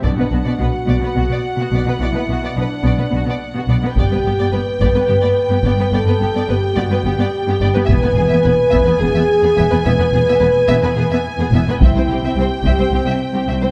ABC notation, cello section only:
X:1
M:7/8
L:1/16
Q:1/4=107
K:Bphr
V:1 name="Cello section" clef=bass
B,, B,, B,, B,, B,, z B,, B,, B,, B,, z B,, B,, B,, | B,, B,, B,, B,, B,, z B,, B,, B,, B,, z B,, B,, B,, | G,, G,, G,, G,, G,, z G,, G,, G,, G,, z G,, G,, G,, | G,, G,, G,, G,, G,, z G,, G,, G,, G,, z G,, G,, G,, |
E,, E,, E,, E,, E,, z E,, E,, E,, E,, z E,, E,, E,, | E,, E,, E,, E,, E,, z E,, E,, E,, E,, z E,, E,, E,, | C,, C,, C,, C,, C,, z C,, C,, C,, C,, z C,, C,, C,, |]